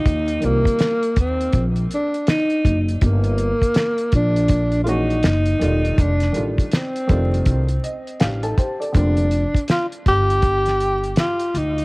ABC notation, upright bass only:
X:1
M:4/4
L:1/16
Q:"Swing 16ths" 1/4=81
K:Fmix
V:1 name="Upright bass" clef=bass
E,,2 C,, z3 E,,2 B,,,2 z4 ^F,,,2 | G,,,3 z3 B,,,6 _G,,,2 =E,,,2 | F,,,2 A,,, z3 F,,,2 C,,2 z2 A,,,2 z2 | F,,,3 z3 G,,,6 z2 D,,2 |]